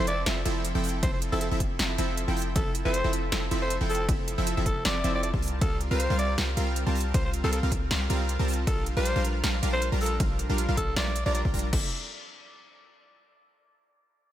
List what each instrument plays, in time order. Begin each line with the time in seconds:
0.00 808-style bass F1, supersaw synth F3 C4 E4 A4 E5
0.07 alto saxophone D5, closed hi-hat
0.26 808-style bass F1, supersaw synth F3 C4 E4 A4 E5, snare, closed hi-hat, ride
0.45 808-style bass F1, supersaw synth F3 C4 E4 A4 E5, closed hi-hat
0.65 closed hi-hat
0.75 808-style bass F1, supersaw synth F3 C4 E4 A4 G5
0.84 open hi-hat
0.89 closed hi-hat
1.03 808-style bass F1, supersaw synth F3 C4 E4 A4 E5, alto saxophone C5, kick, closed hi-hat, ride
1.13 alto saxophone C5
1.22 closed hi-hat
1.32 808-style bass F1, supersaw synth F3 C4 E4 A4 E5, alto saxophone A4
1.41 alto saxophone A4, closed hi-hat
1.51 808-style bass F1, supersaw synth F3 C4 E4 A4 E5
1.60 kick, closed hi-hat
1.79 808-style bass F1, supersaw synth F3 C4 E4 A4 E5, snare, closed hi-hat, ride
1.98 808-style bass F1, supersaw synth F3 C4 E4 A4 E5, closed hi-hat
2.17 closed hi-hat
2.28 808-style bass F1, supersaw synth F3 C4 E4 A4 G5
2.37 open hi-hat
2.42 closed hi-hat
2.56 808-style bass F1, supersaw synth F3 C4 E4 A4 E5, alto saxophone A4, kick, closed hi-hat, ride
2.75 closed hi-hat
2.85 808-style bass F1, supersaw synth F3 C4 E4 A4 E5, alto saxophone C5
2.94 closed hi-hat
3.04 808-style bass F1, supersaw synth F3 C4 E4 A4 E5
3.13 closed hi-hat
3.32 808-style bass F1, supersaw synth F3 C4 E4 A4 E5, snare, closed hi-hat, ride
3.51 808-style bass F1, supersaw synth F3 C4 E4 A4 E5, closed hi-hat
3.62 alto saxophone C5
3.70 closed hi-hat
3.81 808-style bass F1, supersaw synth F3 C4 E4 A4 G5
3.89 alto saxophone A4, open hi-hat
3.95 closed hi-hat
4.09 808-style bass F1, supersaw synth F3 C4 E4 A4 E5, kick, closed hi-hat, ride
4.28 closed hi-hat
4.38 808-style bass F1, supersaw synth F3 C4 E4 A4 E5
4.47 closed hi-hat
4.57 808-style bass F1, supersaw synth F3 C4 E4 A4 E5
4.66 alto saxophone A4, kick, closed hi-hat
4.85 808-style bass F1, supersaw synth F3 C4 E4 A4 E5, alto saxophone D5, snare, closed hi-hat, ride
5.04 808-style bass F1, supersaw synth F3 C4 E4 A4 E5, closed hi-hat
5.14 alto saxophone D5
5.23 alto saxophone D5, closed hi-hat
5.34 808-style bass C2, supersaw synth G3 C4 F4 A#4 A5, kick
5.42 open hi-hat
5.48 closed hi-hat
5.61 808-style bass C2, supersaw synth G3 C4 F4 A#4 F5, alto saxophone A4, kick, closed hi-hat, ride
5.81 closed hi-hat
5.91 808-style bass C2, supersaw synth G3 C4 F4 A#4 F5, alto saxophone C5
6.00 closed hi-hat
6.10 808-style bass C2, supersaw synth G3 C4 F4 A#4 F5
6.19 alto saxophone D5, closed hi-hat
6.38 808-style bass C2, supersaw synth G3 C4 F4 A#4 F5, snare, closed hi-hat, ride
6.57 808-style bass C2, supersaw synth G3 C4 F4 A#4 F5, closed hi-hat
6.76 closed hi-hat
6.86 808-style bass C2, supersaw synth G3 C4 F4 A#4 A5
6.95 open hi-hat
7.01 closed hi-hat
7.14 808-style bass C2, supersaw synth C4 F4 F5, alto saxophone C5, kick, closed hi-hat, ride
7.25 alto saxophone C5
7.33 closed hi-hat
7.44 808-style bass C2, supersaw synth G3 C4 F4 A#4 F5, alto saxophone A4
7.53 alto saxophone A4, closed hi-hat
7.63 808-style bass C2, supersaw synth G3 C4 F4 A#4 F5
7.72 kick, closed hi-hat
7.91 808-style bass C2, supersaw synth G3 C4 F4 A#4 F5, snare, closed hi-hat, ride
8.10 808-style bass C2, supersaw synth G3 C4 F4 A#4 F5, closed hi-hat
8.29 closed hi-hat
8.39 808-style bass C2, supersaw synth G3 C4 F4 A#4 A5
8.48 open hi-hat
8.53 closed hi-hat
8.67 808-style bass A#1, supersaw synth G3 D4 F4 A#4 F5, alto saxophone A4, kick, closed hi-hat, ride
8.86 closed hi-hat
8.97 808-style bass A#1, supersaw synth G3 D4 F4 A#4 F5, alto saxophone C5
9.05 closed hi-hat
9.16 808-style bass A#1, supersaw synth G3 D4 F4 A#4 F5
9.25 closed hi-hat
9.44 808-style bass A#1, supersaw synth G3 D4 F4 A#4 F5, snare, closed hi-hat, ride
9.63 808-style bass A#1, supersaw synth G3 D4 F4 A#4 F5, closed hi-hat
9.73 alto saxophone C5
9.82 closed hi-hat
9.92 808-style bass A#1, supersaw synth G3 D4 F4 A#4 A#5
10.01 alto saxophone A4, open hi-hat
10.06 closed hi-hat
10.20 808-style bass A#1, supersaw synth G3 D4 F4 A#4 F5, kick, closed hi-hat, ride
10.39 closed hi-hat
10.49 808-style bass A#1, supersaw synth G3 D4 F4 A#4 F5
10.58 closed hi-hat
10.69 808-style bass A#1, supersaw synth G3 D4 F4 A#4 F5
10.77 alto saxophone A4, kick, closed hi-hat
10.96 808-style bass A#1, supersaw synth G3 D4 F4 A#4 F5, alto saxophone D5, snare, closed hi-hat, ride
11.07 snare
11.16 closed hi-hat
11.26 808-style bass A#1, supersaw synth G3 D4 F4 A#4 A#5, alto saxophone D5
11.35 alto saxophone D5, closed hi-hat
11.45 808-style bass A#1, supersaw synth G3 D4 F4 A#4 G5, kick
11.54 808-style bass A#1, supersaw synth G3 D4 F4 A#4 A#5, open hi-hat
11.59 closed hi-hat
11.73 808-style bass F1, supersaw synth F3 C4 E4 A4 E5, kick, crash